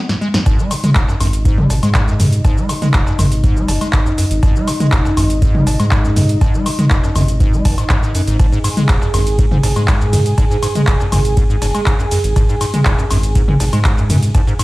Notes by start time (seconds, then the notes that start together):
0.09 G#2, snare
0.21 G#3
0.34 G#2, snare
0.46 G#1 G#2 D#4 D#5, kick, closed hi-hat, cowbell, shaker
0.59 G#3, shaker
0.71 G#2, open hi-hat, high woodblock, shaker
0.84 G#3, closed hi-hat, mid tom, shaker
0.95 D#1 G#2, kick, clap, closed hi-hat, shaker
1.08 F#2, cowbell, shaker
1.21 G#1 F#2, open hi-hat, high woodblock, shaker
1.33 closed hi-hat, shaker
1.45 G#2, kick, closed hi-hat, shaker
1.58 G#3, mid tom
1.70 G#1 G#2, open hi-hat, cowbell, shaker
1.83 G#2 G#3, closed hi-hat, high woodblock, shaker
1.94 G#2, kick, clap, closed hi-hat, shaker
2.08 F#2, shaker
2.20 F#2, open hi-hat, mid tom, shaker
2.33 closed hi-hat, shaker
2.45 G#2, kick, closed hi-hat, cowbell, shaker
2.57 G#3, shaker
2.69 G#2, open hi-hat, high woodblock, shaker
2.82 G#3, closed hi-hat, mid tom, shaker
2.94 D#1 G#2, kick, clap, closed hi-hat, shaker
3.07 F#2, cowbell, shaker
3.19 G#1 F#2, open hi-hat, mid tom, high woodblock, shaker
3.32 closed hi-hat, shaker
3.44 G#2, kick, closed hi-hat, shaker
3.56 G#3, shaker
3.68 F#1 G#2, open hi-hat, cowbell, shaker
3.81 G#3, closed hi-hat, high woodblock, shaker
3.93 G#2, kick, clap, closed hi-hat, shaker
4.06 F#2, shaker
4.18 F#2, open hi-hat, shaker
4.31 G#1, closed hi-hat, shaker
4.43 G#1 G#2, kick, closed hi-hat, cowbell, shaker
4.56 G#3, shaker
4.68 G#2, open hi-hat, high woodblock, shaker
4.80 G#3, closed hi-hat, mid tom, shaker
4.92 D#1 G#2, kick, clap, closed hi-hat, shaker
5.05 F#2, cowbell, shaker
5.17 G#1 F#2, open hi-hat, high woodblock, shaker
5.30 closed hi-hat, shaker
5.42 G#2, kick, closed hi-hat, shaker
5.55 G#3, mid tom
5.67 G#1 G#2, open hi-hat, cowbell, shaker
5.80 G#2 G#3, closed hi-hat, high woodblock, shaker
5.91 G#2, kick, clap, closed hi-hat, shaker
6.04 F#2, shaker
6.16 F#2, open hi-hat, mid tom, shaker
6.29 closed hi-hat, shaker
6.41 G#2, kick, closed hi-hat, cowbell, shaker
6.54 G#3, shaker
6.66 G#2, open hi-hat, high woodblock, shaker
6.79 G#3, closed hi-hat, mid tom, shaker
6.90 D#1 G#2, kick, clap, closed hi-hat, shaker
7.04 F#2, cowbell, shaker
7.16 G#1 F#2, open hi-hat, mid tom, high woodblock, shaker
7.28 closed hi-hat, shaker
7.40 G#2, kick, closed hi-hat, shaker
7.53 G#3, shaker
7.65 F#1 D#3, kick, open hi-hat, cowbell, shaker
7.78 G#2, closed hi-hat, high woodblock, shaker
7.89 G#2, kick, clap, closed hi-hat, shaker
8.03 G#2, shaker
8.15 F#2, open hi-hat, shaker
8.28 G#1 G#2, closed hi-hat, shaker
8.39 G#1 G#2 G#4 G#5, kick, closed hi-hat, ride, cowbell, shaker
8.52 G#2, shaker
8.64 G#2, open hi-hat, ride, high woodblock, shaker
8.77 G#3, closed hi-hat, mid tom, shaker
8.89 D#1 G#2, kick, clap, closed hi-hat, ride, shaker
9.02 F#2, cowbell, shaker
9.14 G#1 F#2, open hi-hat, ride, high woodblock, shaker
9.27 closed hi-hat, shaker
9.39 G#2, kick, closed hi-hat, ride, shaker
9.51 G#2, mid tom
9.63 G#1 G#2, open hi-hat, ride, cowbell, shaker
9.76 G#2 G#3, closed hi-hat, high woodblock, shaker
9.88 G#2, kick, clap, closed hi-hat, ride, shaker
10.01 F#2, shaker
10.13 F#2, open hi-hat, mid tom, ride, shaker
10.26 closed hi-hat, shaker
10.38 G#2, kick, closed hi-hat, ride, cowbell, shaker
10.51 G#2, shaker
10.63 G#2, open hi-hat, ride, high woodblock, shaker
10.75 G#3, closed hi-hat, mid tom, shaker
10.87 D#1 G#2, kick, clap, closed hi-hat, ride, shaker
11.00 F#2, cowbell, shaker
11.12 G#1 F#2, open hi-hat, mid tom, ride, high woodblock, shaker
11.25 closed hi-hat, shaker
11.37 G#2, kick, closed hi-hat, ride, shaker
11.50 G#2, shaker
11.62 F#1 G#2, open hi-hat, ride, cowbell, shaker
11.75 G#3, closed hi-hat, high woodblock, shaker
11.86 G#2, kick, clap, closed hi-hat, ride, shaker
11.99 F#2, shaker
12.11 F#2, open hi-hat, ride, shaker
12.24 G#1, closed hi-hat, shaker
12.36 G#1 G#2, kick, closed hi-hat, ride, cowbell, shaker
12.49 G#2, shaker
12.61 G#2, open hi-hat, ride, high woodblock, shaker
12.74 G#3, closed hi-hat, mid tom, shaker
12.85 D#1 G#2, kick, clap, closed hi-hat, ride, shaker
12.99 F#2, cowbell, shaker
13.11 G#1 F#2, open hi-hat, ride, high woodblock, shaker
13.23 closed hi-hat, shaker
13.35 G#2, kick, closed hi-hat, ride, shaker
13.48 G#2, mid tom
13.60 G#1 G#2, open hi-hat, ride, cowbell, shaker
13.73 G#2 G#3, closed hi-hat, high woodblock, shaker
13.84 G#2, kick, clap, closed hi-hat, ride, shaker
13.98 F#2, shaker
14.10 F#2, open hi-hat, mid tom, ride, shaker
14.23 closed hi-hat, shaker
14.35 G#2, kick, closed hi-hat, ride, cowbell, shaker
14.47 G#2, shaker
14.59 G#2, open hi-hat, ride, high woodblock, shaker